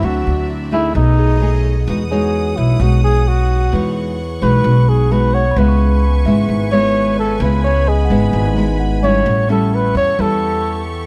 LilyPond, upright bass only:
\new Staff \with { instrumentName = "Upright bass" } { \clef bass \time 4/4 \key b \phrygian \tempo 4 = 130 d,8 d,4. b,,2 | \key e \major e,4. b,,8 b,,2 | e,4. b,,8 b,,2 | cis,4. gis,,8 gis,,2 |
cis,4. gis,,8 gis,,2 | a,,4. e,8 e,2 | }